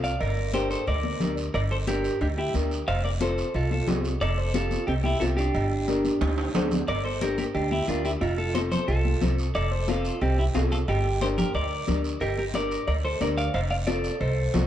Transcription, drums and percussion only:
0.04 short guiro
0.20 cowbell, long guiro
0.37 high conga
0.53 cowbell, high conga, short guiro
0.71 short guiro
0.87 cowbell, high conga, long guiro
1.04 high conga
1.20 cowbell, high conga, low conga, short guiro
1.37 short guiro
1.54 cowbell, long guiro
1.71 high conga
1.87 cowbell, high conga, short guiro
2.04 short guiro
2.21 cowbell, high conga, long guiro
2.54 cowbell, high conga, short guiro
2.71 short guiro
2.88 cowbell, long guiro
3.04 high conga
3.21 cowbell, high conga, short guiro
3.38 short guiro
3.54 cowbell, high conga, long guiro
3.71 high conga
3.88 cowbell, high conga, low conga, low timbale, short guiro
4.04 short guiro
4.21 cowbell, long guiro
4.38 high conga
4.54 cowbell, high conga, short guiro
4.71 high conga, short guiro
4.88 cowbell, high conga, long guiro
5.04 high conga
5.21 cowbell, high conga, short guiro
5.38 short guiro
5.55 cowbell, long guiro
5.71 high conga
5.88 cowbell, high conga, short guiro
6.05 high conga, short guiro
6.21 cowbell, high conga, high timbale, long guiro
6.38 high timbale
6.55 cowbell, low conga, low timbale, short guiro
6.71 low conga, low timbale, short guiro
6.88 cowbell, long guiro
7.05 high conga
7.21 cowbell, high conga, short guiro
7.38 high conga, short guiro
7.55 cowbell, high conga, long guiro
7.72 high conga
7.88 cowbell, high conga, short guiro
8.05 short guiro
8.21 cowbell, long guiro
8.38 high conga
8.55 cowbell, high conga, short guiro
8.71 high conga, low conga, short guiro
8.88 cowbell, high conga, long guiro
9.05 high conga
9.21 cowbell, high conga, low conga, short guiro
9.38 short guiro
9.55 cowbell, long guiro
9.71 high conga
9.88 cowbell, high conga, short guiro
10.05 short guiro
10.21 cowbell, high conga, long guiro
10.55 cowbell, high conga, low timbale, short guiro
10.71 short guiro
10.88 cowbell, long guiro
11.05 high conga
11.21 cowbell, high conga, short guiro
11.38 high conga, low conga, short guiro
11.54 cowbell, high conga, long guiro
11.88 cowbell, high conga, low conga, short guiro
12.04 short guiro
12.21 cowbell, long guiro
12.37 high conga
12.54 cowbell, high conga, short guiro
12.71 short guiro
12.88 cowbell, high conga, long guiro
13.21 cowbell, high conga, short guiro
13.37 short guiro
13.54 cowbell, long guiro
13.71 high conga
13.87 cowbell, high conga, short guiro
14.04 short guiro
14.20 cowbell, high conga, long guiro
14.54 cowbell, high conga, low conga, low timbale, short guiro

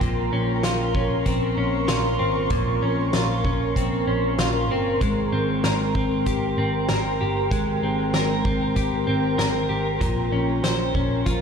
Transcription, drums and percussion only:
0.01 kick, closed hi-hat
0.63 snare, closed hi-hat
0.95 kick
1.26 kick, closed hi-hat
1.88 snare, closed hi-hat
2.50 kick, closed hi-hat
3.13 snare, closed hi-hat
3.45 kick
3.76 kick, closed hi-hat
4.39 snare, closed hi-hat
5.01 kick, closed hi-hat
5.64 snare, closed hi-hat
5.95 kick
6.26 kick, closed hi-hat
6.89 snare, closed hi-hat
7.51 kick, closed hi-hat
8.14 snare, closed hi-hat
8.45 kick
8.76 kick, closed hi-hat
9.39 snare, closed hi-hat
10.01 kick, closed hi-hat
10.64 snare, closed hi-hat
10.95 kick
11.26 kick, closed hi-hat

